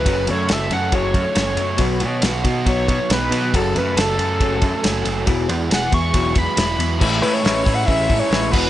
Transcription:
Already playing: overdriven electric guitar F#3, analog synth lead B4
0.05 picked electric bass F#1, clean electric guitar F#2 C#3 F#3, overdriven electric guitar F#2, string machine C#3 F#3 A3 F#4 A4, kick, ride
0.27 clean electric guitar F#2 C#3, picked electric bass F#2, overdriven electric guitar A3, analog synth lead C#5, ride
0.49 picked electric bass F#1, clean electric guitar F#2 C#3, overdriven electric guitar A4, snare, ride
0.53 analog synth lead E5
0.70 picked electric bass F#2, clean electric guitar F#2 C#3, overdriven electric guitar C#4, analog synth lead F#5, ride
0.92 picked electric bass F#1, clean electric guitar F#2 C#3 F#3, overdriven electric guitar F#3, analog synth lead C#5, kick, ride
1.14 clean electric guitar F#2 C#3, picked electric bass F#2, overdriven electric guitar A3, kick, ride
1.35 picked electric bass F#1, clean electric guitar F#2 C#3, overdriven electric guitar C#4, snare, ride
1.57 picked electric bass F#2, clean electric guitar F#2 C#3, overdriven electric guitar F#3, ride
1.76 picked electric bass B1, clean electric guitar B2 F#3 B3, overdriven electric guitar B2, string machine D#3 B3 B4, kick, ride
2.00 clean electric guitar B2 F#3, picked electric bass B2, overdriven electric guitar B3, ride
2.22 picked electric bass B1, clean electric guitar B2 F#3, overdriven electric guitar F#4, snare, ride
2.44 clean electric guitar B2 F#3, picked electric bass B2, overdriven electric guitar D#4, kick, ride
2.66 picked electric bass B1, clean electric guitar B2 F#3 B3, overdriven electric guitar F#3, analog synth lead C#5, kick, ride
2.87 clean electric guitar B2 F#3, picked electric bass B2, overdriven electric guitar B3, kick, ride
3.10 picked electric bass B1, clean electric guitar B2 F#3, overdriven electric guitar D#4, analog synth lead B4, snare, ride
3.31 picked electric bass B2, clean electric guitar B2 F#3, overdriven electric guitar F#3, ride
3.52 picked electric bass F#1, overdriven electric guitar F#2, clean electric guitar F#2 C#3 F#3, string machine C#3, analog synth lead A4, kick, ride
3.75 picked electric bass F#2, clean electric guitar F#2 C#3, overdriven electric guitar A3, analog synth lead B4, ride
3.96 picked electric bass F#1, clean electric guitar F#2 C#3, overdriven electric guitar A4, snare, ride
4.01 analog synth lead A4
4.18 picked electric bass F#2, clean electric guitar F#2 C#3, overdriven electric guitar C#4, ride
4.40 picked electric bass F#1, clean electric guitar F#2 C#3 F#3, overdriven electric guitar F#3, kick, ride
4.62 clean electric guitar F#2 C#3, picked electric bass F#2, overdriven electric guitar A3, kick, ride
4.83 picked electric bass F#1, clean electric guitar F#2 C#3, overdriven electric guitar C#4, snare, ride
5.04 picked electric bass F#1, clean electric guitar F#2 C#3, overdriven electric guitar F#3, ride
5.26 picked electric bass E1, clean electric guitar E2 B2 F#3, string machine E3 G#3 B3 G#4, overdriven electric guitar E3, kick, ride
5.49 picked electric bass E2, clean electric guitar E2 B2, overdriven electric guitar B3, ride
5.71 picked electric bass E1, clean electric guitar E2 B2, overdriven electric guitar G#4, analog synth lead F#5, snare, ride
5.91 clean electric guitar E2 B2, picked electric bass E2, overdriven electric guitar E4, analog synth lead C#6, kick, ride
6.13 picked electric bass E1, clean electric guitar E2 B2 F#3, overdriven electric guitar F#3, kick, ride
6.35 picked electric bass E2, clean electric guitar E2 B2, overdriven electric guitar B3, analog synth lead B5, kick, ride
6.57 picked electric bass E1, clean electric guitar E2 B2, overdriven electric guitar E4, analog synth lead B5, snare, ride
6.78 picked electric bass E2, clean electric guitar E2 B2, overdriven electric guitar F#3, ride
6.99 picked electric bass A1, clean electric guitar A2 E3 G#3 C#4 E4, overdriven electric guitar A2, string machine G#3 C#5 E5, kick, crash
7.22 picked electric bass A2, clean electric guitar G#3 C#4 E4, analog synth lead B4, open hi-hat
7.33 analog synth lead C#5
7.42 picked electric bass A1, clean electric guitar A2 E3 G#3 C#4 E4, overdriven electric guitar C#4, open hi-hat
7.46 snare
7.64 picked electric bass A2, clean electric guitar C#4 E4, overdriven electric guitar E4, kick, open hi-hat
7.68 clean electric guitar G#3
7.74 analog synth lead F#5
7.85 picked electric bass A1, clean electric guitar E3 G#3 C#4 E4, overdriven electric guitar C#4, analog synth lead E5, kick, open hi-hat
8.08 picked electric bass A2, clean electric guitar A2 E3 G#3 C#4 E4, overdriven electric guitar E4, kick, open hi-hat
8.19 analog synth lead C#5
8.30 picked electric bass A1, clean electric guitar E3 G#3 C#4 E4, overdriven electric guitar G#3, snare, open hi-hat
8.51 picked electric bass E1, overdriven electric guitar E3, clean electric guitar E3 G#3 B3 F#4, string machine F#4 B4 G#5, analog synth lead B4, kick, crash
8.56 clean electric guitar E2 B2

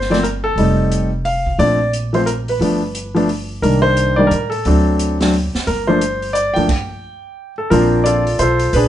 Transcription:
Already playing: upright bass G1
0.01 snare
0.10 grand piano F3 A3 A#3 C4 D5, snare, open hi-hat
0.23 grand piano A#4, closed hi-hat
0.44 grand piano A4
0.56 upright bass F1, grand piano G3 A3 C4 D#4, open hi-hat
0.92 closed hi-hat
1.25 grand piano F5, open hi-hat
1.46 kick
1.58 upright bass A#1, grand piano F3 A3 C4 D4 D5, open hi-hat
1.93 closed hi-hat
2.13 grand piano F3 A3 C4 F4 C5, open hi-hat
2.26 grand piano A#4, closed hi-hat
2.48 grand piano B4, open hi-hat
2.59 upright bass G1, grand piano F3 A3 B3 D4, open hi-hat
2.95 closed hi-hat
3.15 grand piano F3 A3 B3 D4, open hi-hat
3.29 open hi-hat
3.62 upright bass C2, grand piano D#3 G3 A#3 D4 A#4, open hi-hat
3.82 grand piano C5
3.97 closed hi-hat
4.16 grand piano D#3 G3 A#3 D4 D5
4.27 grand piano A#4
4.31 upright bass A2, closed hi-hat
4.50 grand piano A4, open hi-hat
4.65 upright bass D2, grand piano F#3 A3 C4 D4, open hi-hat
4.99 closed hi-hat
5.20 grand piano F#3 A3 C4 D4, snare, open hi-hat
5.34 open hi-hat
5.55 muted upright bass stroke, snare
5.67 upright bass G1, grand piano A#4, open hi-hat
5.87 grand piano F3 A3 A#3 D4 C5
6.01 closed hi-hat
6.22 open hi-hat
6.33 grand piano D5, closed hi-hat
6.54 upright bass G#1, grand piano F3 A3 A#3 G5, open hi-hat
6.58 grand piano D4
6.69 kick, crash
7.58 grand piano A4
7.70 upright bass A#1, grand piano F3 A#3 C4 D4 F4 A#4, open hi-hat
8.04 grand piano F4 A4 D5, closed hi-hat
8.27 open hi-hat
8.39 upright bass B1, grand piano F4 A4 C5, closed hi-hat
8.60 open hi-hat
8.73 upright bass A#1, grand piano D4 G#4 B4, open hi-hat

